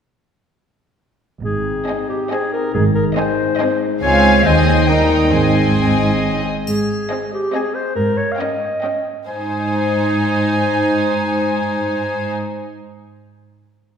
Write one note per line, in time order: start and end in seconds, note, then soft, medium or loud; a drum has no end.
1.43 1.78 G#1 soft
1.43 1.78 G#2 soft
1.43 2.70 C4 soft
1.43 3.99 D#4 soft
1.43 2.05 G#4 medium
1.87 2.20 C4 soft
1.87 2.20 D#5 medium
1.87 2.20 G#5 soft
2.09 2.31 G4 medium
2.31 2.63 C4 soft
2.31 2.52 G#4 medium
2.31 2.63 D#5 soft
2.31 2.64 G#5 soft
2.53 2.74 A#4 medium
2.74 3.08 G#1 medium
2.74 3.08 G#2 medium
2.74 4.85 G#3 medium
2.74 2.84 G#4 medium
2.95 3.05 A#4 medium
3.16 3.49 C4 medium
3.16 3.80 C5 medium
3.16 3.48 D#5 medium
3.16 3.49 G#5 medium
3.59 3.92 C4 medium
3.59 3.91 D#5 medium
3.59 3.92 G#5 medium
4.02 4.42 C#2 medium
4.02 4.43 C#2 medium
4.02 4.43 C4 medium
4.02 4.44 F4 medium
4.02 4.42 C#5 medium
4.02 4.42 F5 soft
4.02 4.43 G#5 medium
4.45 4.87 D#2 soft
4.45 4.87 D#2 medium
4.45 4.88 C4 medium
4.45 5.71 D#4 medium
4.45 4.90 C5 medium
4.45 4.87 D#5 medium
4.45 4.88 G#5 medium
4.88 5.32 D#2 medium
4.88 5.33 G3 soft
4.88 5.33 D#4 soft
4.88 5.32 A#4 medium
4.88 5.31 D#5 soft
4.88 5.33 G5 soft
5.32 6.47 G#1 soft
5.32 6.47 G#2 soft
5.32 6.46 C4 soft
5.32 5.74 C4 soft
5.32 6.42 G#4 medium
5.32 6.44 D#5 soft
5.32 6.46 G#5 soft
5.77 5.98 C4 soft
6.00 6.10 D#4 soft
6.22 6.32 C#4 soft
6.45 6.55 C4 soft
6.66 7.02 G#2 medium
6.66 7.28 G#4 medium
6.66 triangle soft
7.10 7.43 C4 soft
7.10 7.43 D#5 soft
7.10 7.43 G#5 soft
7.33 7.54 G4 medium
7.54 7.86 C4 soft
7.54 7.76 G#4 medium
7.54 7.86 D#5 medium
7.54 7.86 G#5 medium
7.75 7.95 C5 medium
7.96 8.31 G#2 medium
7.96 8.19 A#4 medium
8.17 8.33 C#5 medium
8.32 8.41 F5 soft
8.39 8.72 C#4 soft
8.39 9.05 D#5 medium
8.39 8.72 D#5 soft
8.39 8.72 G5 soft
8.83 9.16 C#4 soft
8.83 9.16 D#5 soft
8.83 9.16 G5 soft
9.27 12.29 G#2 soft
9.27 12.29 D#4 soft
9.27 12.29 C5 soft
9.27 12.28 G#5 soft
9.27 12.29 G#5 soft